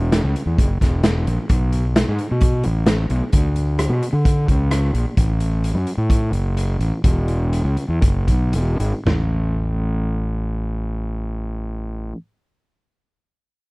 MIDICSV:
0, 0, Header, 1, 3, 480
1, 0, Start_track
1, 0, Key_signature, 3, "major"
1, 0, Tempo, 458716
1, 1559, Time_signature, 4, 2, 24, 8
1, 5879, Tempo, 474684
1, 7799, Tempo, 513699
1, 9239, Tempo, 537634
1, 13387, End_track
2, 0, Start_track
2, 0, Title_t, "Fingered electric bass"
2, 0, Program_c, 0, 33
2, 0, Note_on_c, 0, 28, 78
2, 203, Note_off_c, 0, 28, 0
2, 247, Note_on_c, 0, 37, 68
2, 355, Note_off_c, 0, 37, 0
2, 478, Note_on_c, 0, 40, 69
2, 591, Note_off_c, 0, 40, 0
2, 608, Note_on_c, 0, 30, 89
2, 828, Note_off_c, 0, 30, 0
2, 852, Note_on_c, 0, 28, 74
2, 1295, Note_off_c, 0, 28, 0
2, 1323, Note_on_c, 0, 34, 77
2, 1433, Note_off_c, 0, 34, 0
2, 1570, Note_on_c, 0, 35, 80
2, 2126, Note_off_c, 0, 35, 0
2, 2179, Note_on_c, 0, 44, 73
2, 2282, Note_off_c, 0, 44, 0
2, 2419, Note_on_c, 0, 47, 68
2, 2747, Note_off_c, 0, 47, 0
2, 2782, Note_on_c, 0, 33, 71
2, 3220, Note_off_c, 0, 33, 0
2, 3245, Note_on_c, 0, 35, 72
2, 3355, Note_off_c, 0, 35, 0
2, 3482, Note_on_c, 0, 38, 76
2, 4042, Note_off_c, 0, 38, 0
2, 4076, Note_on_c, 0, 47, 69
2, 4190, Note_off_c, 0, 47, 0
2, 4320, Note_on_c, 0, 50, 65
2, 4656, Note_off_c, 0, 50, 0
2, 4686, Note_on_c, 0, 37, 74
2, 5132, Note_off_c, 0, 37, 0
2, 5165, Note_on_c, 0, 34, 83
2, 5274, Note_off_c, 0, 34, 0
2, 5411, Note_on_c, 0, 33, 81
2, 5965, Note_off_c, 0, 33, 0
2, 5999, Note_on_c, 0, 42, 62
2, 6107, Note_off_c, 0, 42, 0
2, 6238, Note_on_c, 0, 45, 69
2, 6566, Note_off_c, 0, 45, 0
2, 6578, Note_on_c, 0, 30, 71
2, 7029, Note_off_c, 0, 30, 0
2, 7065, Note_on_c, 0, 33, 75
2, 7178, Note_off_c, 0, 33, 0
2, 7317, Note_on_c, 0, 28, 74
2, 7883, Note_off_c, 0, 28, 0
2, 7911, Note_on_c, 0, 37, 69
2, 8021, Note_off_c, 0, 37, 0
2, 8142, Note_on_c, 0, 40, 63
2, 8255, Note_off_c, 0, 40, 0
2, 8265, Note_on_c, 0, 30, 86
2, 8487, Note_off_c, 0, 30, 0
2, 8512, Note_on_c, 0, 35, 73
2, 8733, Note_off_c, 0, 35, 0
2, 8753, Note_on_c, 0, 28, 77
2, 8979, Note_off_c, 0, 28, 0
2, 8991, Note_on_c, 0, 32, 68
2, 9107, Note_off_c, 0, 32, 0
2, 9236, Note_on_c, 0, 33, 75
2, 11967, Note_off_c, 0, 33, 0
2, 13387, End_track
3, 0, Start_track
3, 0, Title_t, "Drums"
3, 127, Note_on_c, 9, 42, 75
3, 130, Note_on_c, 9, 38, 89
3, 232, Note_off_c, 9, 42, 0
3, 235, Note_off_c, 9, 38, 0
3, 374, Note_on_c, 9, 42, 54
3, 479, Note_off_c, 9, 42, 0
3, 612, Note_on_c, 9, 36, 97
3, 617, Note_on_c, 9, 42, 72
3, 716, Note_off_c, 9, 36, 0
3, 722, Note_off_c, 9, 42, 0
3, 850, Note_on_c, 9, 36, 65
3, 856, Note_on_c, 9, 42, 58
3, 859, Note_on_c, 9, 38, 27
3, 955, Note_off_c, 9, 36, 0
3, 960, Note_off_c, 9, 42, 0
3, 964, Note_off_c, 9, 38, 0
3, 1082, Note_on_c, 9, 42, 75
3, 1085, Note_on_c, 9, 38, 95
3, 1186, Note_off_c, 9, 42, 0
3, 1189, Note_off_c, 9, 38, 0
3, 1330, Note_on_c, 9, 42, 58
3, 1435, Note_off_c, 9, 42, 0
3, 1562, Note_on_c, 9, 42, 70
3, 1568, Note_on_c, 9, 36, 98
3, 1667, Note_off_c, 9, 42, 0
3, 1672, Note_off_c, 9, 36, 0
3, 1805, Note_on_c, 9, 42, 53
3, 1910, Note_off_c, 9, 42, 0
3, 2048, Note_on_c, 9, 42, 69
3, 2051, Note_on_c, 9, 38, 99
3, 2152, Note_off_c, 9, 42, 0
3, 2156, Note_off_c, 9, 38, 0
3, 2286, Note_on_c, 9, 42, 47
3, 2391, Note_off_c, 9, 42, 0
3, 2517, Note_on_c, 9, 42, 62
3, 2528, Note_on_c, 9, 36, 94
3, 2622, Note_off_c, 9, 42, 0
3, 2632, Note_off_c, 9, 36, 0
3, 2757, Note_on_c, 9, 42, 54
3, 2861, Note_off_c, 9, 42, 0
3, 2995, Note_on_c, 9, 42, 72
3, 2998, Note_on_c, 9, 38, 98
3, 3100, Note_off_c, 9, 42, 0
3, 3103, Note_off_c, 9, 38, 0
3, 3241, Note_on_c, 9, 42, 51
3, 3346, Note_off_c, 9, 42, 0
3, 3479, Note_on_c, 9, 42, 72
3, 3486, Note_on_c, 9, 36, 91
3, 3584, Note_off_c, 9, 42, 0
3, 3591, Note_off_c, 9, 36, 0
3, 3723, Note_on_c, 9, 42, 53
3, 3827, Note_off_c, 9, 42, 0
3, 3962, Note_on_c, 9, 42, 74
3, 3965, Note_on_c, 9, 37, 85
3, 4067, Note_off_c, 9, 42, 0
3, 4070, Note_off_c, 9, 37, 0
3, 4212, Note_on_c, 9, 42, 57
3, 4316, Note_off_c, 9, 42, 0
3, 4450, Note_on_c, 9, 36, 89
3, 4451, Note_on_c, 9, 42, 75
3, 4554, Note_off_c, 9, 36, 0
3, 4556, Note_off_c, 9, 42, 0
3, 4692, Note_on_c, 9, 36, 70
3, 4695, Note_on_c, 9, 42, 54
3, 4796, Note_off_c, 9, 36, 0
3, 4800, Note_off_c, 9, 42, 0
3, 4929, Note_on_c, 9, 42, 74
3, 4932, Note_on_c, 9, 37, 96
3, 5033, Note_off_c, 9, 42, 0
3, 5037, Note_off_c, 9, 37, 0
3, 5175, Note_on_c, 9, 42, 59
3, 5280, Note_off_c, 9, 42, 0
3, 5412, Note_on_c, 9, 42, 74
3, 5413, Note_on_c, 9, 36, 88
3, 5516, Note_off_c, 9, 42, 0
3, 5518, Note_off_c, 9, 36, 0
3, 5653, Note_on_c, 9, 42, 57
3, 5757, Note_off_c, 9, 42, 0
3, 5900, Note_on_c, 9, 42, 70
3, 6001, Note_off_c, 9, 42, 0
3, 6130, Note_on_c, 9, 42, 50
3, 6231, Note_off_c, 9, 42, 0
3, 6364, Note_on_c, 9, 36, 88
3, 6368, Note_on_c, 9, 42, 66
3, 6465, Note_off_c, 9, 36, 0
3, 6470, Note_off_c, 9, 42, 0
3, 6599, Note_on_c, 9, 42, 53
3, 6700, Note_off_c, 9, 42, 0
3, 6841, Note_on_c, 9, 42, 69
3, 6942, Note_off_c, 9, 42, 0
3, 7078, Note_on_c, 9, 42, 51
3, 7179, Note_off_c, 9, 42, 0
3, 7316, Note_on_c, 9, 42, 72
3, 7317, Note_on_c, 9, 36, 88
3, 7417, Note_off_c, 9, 42, 0
3, 7418, Note_off_c, 9, 36, 0
3, 7558, Note_on_c, 9, 42, 54
3, 7660, Note_off_c, 9, 42, 0
3, 7809, Note_on_c, 9, 42, 69
3, 7902, Note_off_c, 9, 42, 0
3, 8034, Note_on_c, 9, 42, 48
3, 8128, Note_off_c, 9, 42, 0
3, 8270, Note_on_c, 9, 42, 68
3, 8272, Note_on_c, 9, 36, 90
3, 8363, Note_off_c, 9, 42, 0
3, 8365, Note_off_c, 9, 36, 0
3, 8509, Note_on_c, 9, 42, 50
3, 8510, Note_on_c, 9, 36, 61
3, 8603, Note_off_c, 9, 36, 0
3, 8603, Note_off_c, 9, 42, 0
3, 8745, Note_on_c, 9, 42, 71
3, 8838, Note_off_c, 9, 42, 0
3, 8997, Note_on_c, 9, 42, 60
3, 9090, Note_off_c, 9, 42, 0
3, 9246, Note_on_c, 9, 43, 82
3, 9249, Note_on_c, 9, 38, 83
3, 9335, Note_off_c, 9, 43, 0
3, 9338, Note_off_c, 9, 38, 0
3, 13387, End_track
0, 0, End_of_file